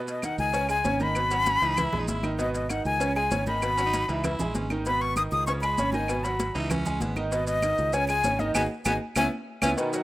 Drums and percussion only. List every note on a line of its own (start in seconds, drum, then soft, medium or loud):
0.08 cowbell medium
0.08 high conga soft
0.08 maracas medium
0.22 cowbell medium
0.22 high conga medium
0.22 claves medium
0.22 maracas medium
0.38 high conga soft
0.38 maracas soft
0.54 cowbell loud
0.54 high conga soft
0.54 maracas medium
0.69 high conga soft
0.69 claves medium
0.69 maracas medium
0.84 cowbell medium
0.84 high conga medium
0.84 maracas medium
1.00 high conga medium
1.00 maracas soft
1.15 cowbell loud
1.15 high conga soft
1.15 claves medium
1.15 maracas medium
1.31 cowbell medium
1.31 high conga soft
1.31 maracas medium
1.46 cowbell medium
1.46 high conga loud
1.46 maracas medium
1.62 cowbell medium
1.62 maracas soft
1.77 cowbell loud
1.77 high conga soft
1.77 low conga medium
1.77 claves medium
1.77 maracas medium
1.93 high conga soft
1.93 low conga medium
2.08 cowbell medium
2.08 high conga medium
2.08 maracas medium
2.23 high conga medium
2.23 claves medium
2.23 maracas soft
2.39 cowbell loud
2.39 high conga soft
2.39 maracas medium
2.54 cowbell medium
2.54 high conga soft
2.54 maracas medium
2.69 cowbell medium
2.69 high conga medium
2.69 claves medium
2.69 maracas medium
2.85 high conga soft
2.85 maracas soft
3.01 cowbell loud
3.01 high conga soft
3.01 maracas medium
3.16 high conga soft
3.16 claves medium
3.31 cowbell medium
3.31 high conga medium
3.31 maracas medium
3.46 high conga medium
3.46 maracas soft
3.62 cowbell loud
3.62 high conga soft
3.62 claves medium
3.62 maracas medium
3.78 cowbell medium
3.78 high conga soft
3.78 maracas medium
3.93 cowbell medium
3.93 high conga medium
3.93 maracas medium
4.09 cowbell medium
4.09 maracas soft
4.24 cowbell loud
4.24 high conga soft
4.24 low conga medium
4.24 claves medium
4.24 maracas medium
4.39 high conga soft
4.39 low conga medium
4.39 maracas medium
4.55 cowbell medium
4.55 high conga medium
4.55 maracas medium
4.70 high conga medium
4.70 claves medium
4.70 maracas soft
4.86 cowbell loud
4.86 high conga soft
4.86 maracas medium
5.01 cowbell medium
5.01 high conga soft
5.16 cowbell medium
5.16 high conga medium
5.16 claves medium
5.16 maracas medium
5.32 high conga soft
5.32 maracas soft
5.47 cowbell loud
5.47 high conga soft
5.47 maracas medium
5.62 high conga soft
5.62 claves medium
5.62 maracas medium
5.78 cowbell medium
5.78 high conga medium
5.78 maracas medium
5.93 high conga loud
5.93 maracas soft
6.08 cowbell loud
6.08 high conga soft
6.08 claves medium
6.08 maracas medium
6.24 cowbell medium
6.24 high conga soft
6.24 maracas medium
6.40 cowbell medium
6.40 high conga loud
6.40 maracas medium
6.55 cowbell medium
6.55 maracas soft
6.70 cowbell loud
6.70 high conga soft
6.70 low conga medium
6.70 claves medium
6.70 maracas medium
6.85 high conga soft
6.85 low conga medium
6.85 maracas medium
7.01 cowbell medium
7.01 high conga medium
7.01 maracas medium
7.16 high conga medium
7.16 claves medium
7.16 maracas soft
7.32 cowbell loud
7.32 high conga soft
7.32 maracas medium
7.47 cowbell medium
7.47 high conga soft
7.47 maracas medium
7.62 cowbell medium
7.62 high conga medium
7.62 claves medium
7.62 maracas medium
7.78 high conga soft
7.78 maracas soft
7.93 cowbell loud
7.93 high conga soft
7.93 maracas medium
8.09 high conga soft
8.09 claves medium
8.09 maracas medium
8.24 cowbell medium
8.24 high conga medium
8.24 maracas medium
8.39 high conga medium
8.39 maracas soft
8.55 cowbell loud
8.55 high conga loud
8.55 claves loud
8.55 maracas loud
8.85 cowbell loud
8.85 high conga loud
8.85 claves loud
8.85 maracas loud
9.16 cowbell loud
9.16 high conga loud
9.16 claves loud
9.16 maracas loud
9.62 cowbell loud
9.62 high conga loud
9.62 claves loud
9.62 maracas loud
9.78 cowbell loud
9.78 high conga soft
9.78 maracas medium
9.93 cowbell medium
9.93 high conga soft
9.93 maracas medium